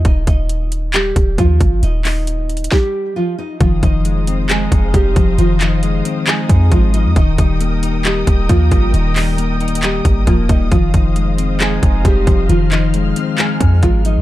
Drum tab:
HH |x--x--x--x--x--x--x--x--|x--o--x--xxx------------|x--x--x--x--x--x--x--x--|x--x--x--x--x--x--x--x--|
CP |------------x-----------|---x--------------------|------------x-----------|---x--------x-----------|
SD |------------------------|------------o-----------|------------------------|------------------------|
BD |o--o-----------o--o--o--|------------o-----------|o--o-----------o--o--o--|---------------o--o-----|

HH |x--x--x--x--x--x--x--x--|x--o--x--xxxx--x--x--x--|x--x--x--x--x--x--x--x--|x--x--x--x--x--x--x--x--|
CP |------------x-----------|---x--------x-----------|------------x-----------|---x--------x-----------|
SD |------------------------|------------------------|------------------------|------------------------|
BD |o--o-----------o--o--o--|---------------o--o--o--|o--o-----------o--o--o--|---------------o--o-----|